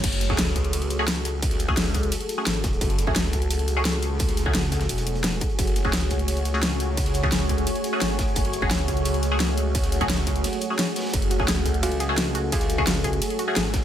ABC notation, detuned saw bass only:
X:1
M:4/4
L:1/8
Q:1/4=173
K:F#m
V:1 name="Detuned saw bass" clef=bass
F,,,2 C,,2 C,,4- | C,,4 z2 G,,,2 | F,,,2 C,,2 C,,4- | C,,4 E,,,3 z |
F,,,2 C,,2 C,,4- | C,,4 z2 G,,,2 | F,,,2 C,,2 C,,4- | C,,4 z4 |
F,,,2 C,,2 z4 | z6 G,,,2 |]